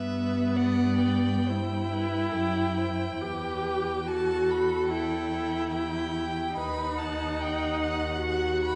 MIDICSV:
0, 0, Header, 1, 5, 480
1, 0, Start_track
1, 0, Key_signature, 1, "minor"
1, 0, Tempo, 910470
1, 781, Tempo, 860832
1, 1743, Time_signature, 4, 2, 24, 8
1, 2221, Tempo, 825309
1, 4948, End_track
2, 0, Start_track
2, 0, Title_t, "Violin"
2, 0, Program_c, 0, 40
2, 0, Note_on_c, 0, 76, 42
2, 298, Note_on_c, 0, 78, 40
2, 306, Note_off_c, 0, 76, 0
2, 539, Note_off_c, 0, 78, 0
2, 551, Note_on_c, 0, 79, 37
2, 2230, Note_on_c, 0, 81, 39
2, 2239, Note_off_c, 0, 79, 0
2, 2479, Note_on_c, 0, 83, 38
2, 2488, Note_off_c, 0, 81, 0
2, 2699, Note_off_c, 0, 83, 0
2, 2703, Note_on_c, 0, 79, 44
2, 3172, Note_off_c, 0, 79, 0
2, 3186, Note_on_c, 0, 79, 44
2, 3663, Note_off_c, 0, 79, 0
2, 3672, Note_on_c, 0, 83, 48
2, 3917, Note_on_c, 0, 81, 40
2, 3926, Note_off_c, 0, 83, 0
2, 4168, Note_on_c, 0, 79, 41
2, 4177, Note_off_c, 0, 81, 0
2, 4395, Note_off_c, 0, 79, 0
2, 4406, Note_on_c, 0, 78, 37
2, 4628, Note_off_c, 0, 78, 0
2, 4635, Note_on_c, 0, 78, 43
2, 4863, Note_off_c, 0, 78, 0
2, 4880, Note_on_c, 0, 83, 48
2, 4948, Note_off_c, 0, 83, 0
2, 4948, End_track
3, 0, Start_track
3, 0, Title_t, "Violin"
3, 0, Program_c, 1, 40
3, 0, Note_on_c, 1, 71, 44
3, 296, Note_on_c, 1, 74, 49
3, 304, Note_off_c, 1, 71, 0
3, 773, Note_on_c, 1, 72, 38
3, 781, Note_off_c, 1, 74, 0
3, 1027, Note_on_c, 1, 71, 45
3, 1035, Note_off_c, 1, 72, 0
3, 1259, Note_on_c, 1, 67, 39
3, 1267, Note_off_c, 1, 71, 0
3, 1502, Note_on_c, 1, 72, 41
3, 1511, Note_off_c, 1, 67, 0
3, 1746, Note_on_c, 1, 71, 37
3, 1754, Note_off_c, 1, 72, 0
3, 2223, Note_on_c, 1, 69, 47
3, 2232, Note_off_c, 1, 71, 0
3, 3178, Note_on_c, 1, 67, 45
3, 3187, Note_off_c, 1, 69, 0
3, 3678, Note_on_c, 1, 71, 45
3, 3687, Note_off_c, 1, 67, 0
3, 3915, Note_off_c, 1, 71, 0
3, 3918, Note_on_c, 1, 78, 58
3, 4948, Note_off_c, 1, 78, 0
3, 4948, End_track
4, 0, Start_track
4, 0, Title_t, "Viola"
4, 0, Program_c, 2, 41
4, 0, Note_on_c, 2, 59, 60
4, 790, Note_on_c, 2, 64, 58
4, 798, Note_off_c, 2, 59, 0
4, 1746, Note_on_c, 2, 67, 52
4, 1755, Note_off_c, 2, 64, 0
4, 2217, Note_off_c, 2, 67, 0
4, 2220, Note_on_c, 2, 66, 63
4, 2708, Note_on_c, 2, 64, 52
4, 2717, Note_off_c, 2, 66, 0
4, 3669, Note_off_c, 2, 64, 0
4, 3673, Note_on_c, 2, 63, 62
4, 4605, Note_off_c, 2, 63, 0
4, 4628, Note_on_c, 2, 66, 61
4, 4948, Note_off_c, 2, 66, 0
4, 4948, End_track
5, 0, Start_track
5, 0, Title_t, "Cello"
5, 0, Program_c, 3, 42
5, 0, Note_on_c, 3, 43, 41
5, 1243, Note_off_c, 3, 43, 0
5, 1262, Note_on_c, 3, 42, 38
5, 1733, Note_off_c, 3, 42, 0
5, 1747, Note_on_c, 3, 40, 46
5, 3674, Note_on_c, 3, 39, 46
5, 3683, Note_off_c, 3, 40, 0
5, 4948, Note_off_c, 3, 39, 0
5, 4948, End_track
0, 0, End_of_file